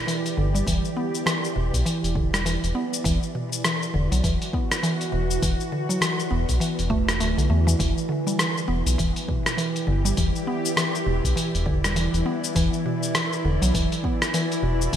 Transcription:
Already playing: E3 E4 G4 D5
0.07 E3, open hi-hat, cabasa
0.26 open hi-hat, cabasa
0.37 G1 D3
0.55 G3, cabasa
0.67 E1 E3, kick, open hi-hat, cabasa
0.85 cabasa
0.97 B3
1.15 cabasa
1.26 E3, cross-stick, open hi-hat, cabasa
1.44 cabasa
1.56 E1 B2
1.74 B1, kick, open hi-hat, cabasa
1.86 E3, open hi-hat, cabasa
2.03 E1, open hi-hat, cabasa
2.15 D3, kick
2.33 G3, cross-stick, cabasa
2.45 E3, open hi-hat, cabasa
2.63 E1, open hi-hat, cabasa
2.75 B3
2.94 cabasa
3.04 E1 E3, kick, open hi-hat, cabasa
3.23 cabasa
3.29 F#4
3.35 B2
3.53 cabasa
3.65 E3, cross-stick, open hi-hat, cabasa
3.83 cabasa
3.94 E1 D3
4.12 B1 F#3, open hi-hat, cabasa
4.24 E1 E3, kick, open hi-hat, cabasa
4.42 open hi-hat, cabasa
4.53 B3, kick
4.72 cross-stick, cabasa
4.83 E3, open hi-hat, cabasa
5.01 open hi-hat, cabasa
5.12 E1 B2
5.31 cabasa
5.42 E1 E3, kick, open hi-hat, cabasa
5.60 cabasa
5.72 D3
5.89 F#3, cabasa
6.01 E3, cross-stick, open hi-hat, cabasa
6.20 cabasa
6.31 E1 B3
6.49 B1, kick, open hi-hat, cabasa
6.60 E3, open hi-hat, cabasa
6.79 E1, open hi-hat, cabasa
6.90 A3, kick
7.09 cross-stick, cabasa
7.20 D1 A3, open hi-hat, cabasa
7.38 B1 D3, open hi-hat, cabasa
7.49 E2 A3
7.67 E3, cabasa
7.79 E1 E3, kick, open hi-hat, cabasa
7.98 cabasa
8.09 D3
8.27 G3, cabasa
8.37 E3 E4, cross-stick, open hi-hat, cabasa
8.57 cabasa
8.68 E1 B3
8.86 B1 G4 D5, open hi-hat, cabasa
8.98 E1 E3, kick, open hi-hat, cabasa
9.16 open hi-hat, cabasa
9.28 B2, kick
9.46 cross-stick, cabasa
9.57 E3, open hi-hat, cabasa
9.76 open hi-hat, cabasa
9.87 G1 D3
10.05 G3, cabasa
10.17 E1 E3, kick, open hi-hat, cabasa
10.36 cabasa
10.47 B3
10.65 cabasa
10.77 E3, cross-stick, open hi-hat, cabasa
10.95 cabasa
11.06 E1 B2
11.24 B1, kick, open hi-hat, cabasa
11.36 E3, open hi-hat, cabasa
11.54 E1, open hi-hat, cabasa
11.66 D3, kick
11.84 G3, cross-stick, cabasa
11.96 E3, open hi-hat, cabasa
12.13 E1, open hi-hat, cabasa
12.26 B3
12.44 cabasa
12.55 E1 E3, kick, open hi-hat, cabasa
12.73 cabasa
12.86 B2
13.03 cabasa
13.15 E3, cross-stick, open hi-hat, cabasa
13.33 cabasa
13.44 E1 D3
13.62 B1 F#3, open hi-hat, cabasa
13.74 E1 E3, kick, open hi-hat, cabasa
13.92 open hi-hat, cabasa
13.98 F#4
14.04 B3, kick
14.22 cross-stick, cabasa
14.34 E3, open hi-hat, cabasa
14.52 open hi-hat, cabasa
14.63 E1 B2
14.82 cabasa
14.93 E1 E3, kick, open hi-hat, cabasa

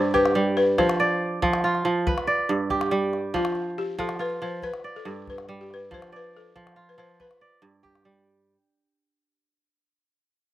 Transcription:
Already playing: G2 F4 B4 C5 D5
0.14 G4 B4, calabash thump
0.26 calabash click
0.35 G3
0.57 B4, calabash click
0.78 F3 C5, calabash thump, calabash click
0.89 calabash click
1.00 D5, calabash click
1.42 F3, calabash thump, calabash click
1.53 calabash click
1.64 F4
1.75 calabash click
1.85 F3
2.07 B4, calabash thump
2.18 calabash click
2.27 D5
2.49 G2
2.70 G4, calabash thump
2.81 calabash click
2.91 G3
3.13 calabash click
3.34 F3 F4, calabash thump, calabash click
3.45 calabash click
3.55 calabash click
3.78 G4
3.99 F3 A4, calabash thump, calabash click
4.09 calabash click
4.19 F4 B4
4.30 calabash click
4.42 F3 C5
4.63 B4, calabash thump
4.74 calabash click
4.84 D5
4.96 A4
5.05 G2 A4
5.27 B4, calabash thump
5.38 calabash click
5.49 G3
5.61 G4
5.71 B4, calabash click
5.91 F3 C5, calabash thump
6.02 calabash click
6.12 B4 D5, calabash click
6.37 A4
6.55 F3, calabash thump
6.67 calabash click
6.76 F4
6.89 B4
6.98 F3 C5
7.10 calabash click
7.20 B4, calabash thump, calabash click
7.31 calabash click
7.41 D5
7.62 G2, calabash click
7.83 G4, calabash thump, calabash click
7.95 calabash click
8.05 G3

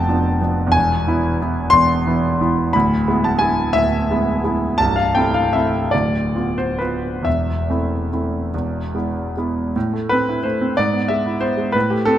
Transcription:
Already playing: F1 F2 F3 B3 D4 F5 G5 A5
0.09 F3 B3 D4
0.41 F3 B3 D4
0.67 E2
0.72 E1 G#5
1.07 E3 B3 E4
1.42 E3 B3 E4
1.70 E1 E2 C6
2.07 E3 B3 E4
2.41 E3 B3 E4
2.73 D1 D2 B5
3.08 G#3 B3 E4
3.24 A5
3.39 G#3 B3 E4 G#5
3.73 D1 D2 E5
4.11 G#3 B3 E4
4.44 G#3 B3 E4
4.78 C1 C2 A5
4.96 F5
5.15 A3 C4 E4 G5
5.34 F5
5.53 A3 C4 E4 E5
5.91 D1 D2 D5
6.36 B3 F4
6.58 C5
6.79 B3 F4 B4
7.22 E1 E2 E5
7.70 A3 C4 E4
8.13 A3 C4 E4
8.54 E1 E2
8.95 G#3 B3 E4
9.37 G#3 B3 E4
9.76 A2
9.93 A3
10.09 C4 B4
10.29 E4
10.43 A3 C5
10.61 C4
10.77 G#2 D5
10.93 B3
11.08 G#3 E5
11.26 E4
11.41 B3 C5
11.58 G#3
11.72 A2 B4
11.90 A3 G4
12.05 C4 A4

